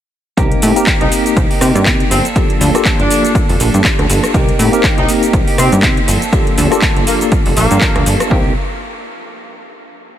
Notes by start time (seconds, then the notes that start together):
0.37 C2 A#3 C4 D#4 G4 A#4, kick, closed hi-hat, shaker
0.52 closed hi-hat
0.62 A2 A#3 D#4 G4, open hi-hat, shaker
0.76 A#3 C4 D#4 G4 A#4, closed hi-hat, shaker
0.87 A#3 D#4 G4, kick, clap, closed hi-hat, shaker
1.01 C2 D#4, closed hi-hat
1.12 A#3 D#4 G4, open hi-hat, shaker
1.26 D#4 G4, closed hi-hat, shaker
1.37 C2, kick, closed hi-hat, shaker
1.50 D#4 G4, open hi-hat
1.61 C3 A#3 D#4 G4, cross-stick, open hi-hat, shaker
1.75 G2, closed hi-hat, shaker
1.86 C3 A#3 D#4 G4, kick, clap, closed hi-hat, shaker
2.00 closed hi-hat
2.10 G1 F3 A#3 C4 D4 A4, open hi-hat, shaker
2.25 A#3 D4 A4, closed hi-hat, shaker
2.36 F3 A#3 D4 F4 G4 A4, kick, closed hi-hat, shaker
2.50 closed hi-hat
2.60 D2 F3 A#3 D4 A4, open hi-hat, shaker
2.74 A#3 D4 F4 G4 A4, cross-stick, closed hi-hat, shaker
2.85 F3 A#3 D4 A4, kick, clap, closed hi-hat, shaker
3.00 G1 D4, closed hi-hat
3.10 F3 A#3 D4 A4, open hi-hat, shaker
3.24 A#3 D4 A4, closed hi-hat, shaker
3.35 kick, closed hi-hat, shaker
3.49 F1 A#3 D4 A4, open hi-hat
3.59 A#1 F3 A#3 D4 A4, open hi-hat, shaker
3.74 G2, closed hi-hat, shaker
3.84 F3 A#3 D4 A4, kick, clap, closed hi-hat, shaker
3.99 D2, cross-stick, closed hi-hat
4.09 G1 F3 A#3 D4 A4, open hi-hat, shaker
4.23 A#3 D4 A4, cross-stick, closed hi-hat, shaker
4.34 C2 A#3 C4 D#4 G4 A#4, kick, closed hi-hat, shaker
4.49 closed hi-hat
4.59 A2 A#3 D#4 G4, open hi-hat, shaker
4.72 A#3 C4 D#4 G4 A#4, closed hi-hat, shaker
4.84 A#3 D#4 G4, kick, clap, closed hi-hat, shaker
4.98 C2 D#4, closed hi-hat
5.09 A#3 D#4 G4, open hi-hat, shaker
5.23 D#4 G4, closed hi-hat, shaker
5.33 C2, kick, closed hi-hat, shaker
5.47 D#4 G4, open hi-hat
5.58 C3 A#3 C4 D#4 G4, cross-stick, open hi-hat, shaker
5.72 G2, closed hi-hat, shaker
5.83 C3 A#3 D#4 G4, kick, clap, closed hi-hat, shaker
5.97 closed hi-hat
6.08 G1 F3 A#3 D4 A4, open hi-hat, shaker
6.21 A#3 D4 A4, closed hi-hat, shaker
6.32 F3 A#3 D4 F4 G4 A4, kick, closed hi-hat, shaker
6.47 closed hi-hat
6.57 D2 F3 A#3 D4 A4, open hi-hat, shaker
6.71 A#3 D4 F4 G4 A4, cross-stick, closed hi-hat, shaker
6.82 F3 A#3 D4 A4, kick, clap, closed hi-hat, shaker
6.96 G1, closed hi-hat
7.07 F3 A#3 D4 A4, open hi-hat, shaker
7.21 A#3 D4 A4, closed hi-hat, shaker
7.32 kick, closed hi-hat, shaker
7.46 F1 A#3 D4 A4, open hi-hat
7.56 A#1 F3 A#3 D4 A4, open hi-hat, shaker
7.71 G2, closed hi-hat, shaker
7.81 F3 A#3 D4 A4, kick, clap, closed hi-hat, shaker
7.96 D2, cross-stick, closed hi-hat
8.06 G1 F3 A#3 D4 A4, open hi-hat, shaker
8.20 A#3 D4 A4, cross-stick, closed hi-hat, shaker
8.30 C2 A#3 C4 D#4 G4 A#4, kick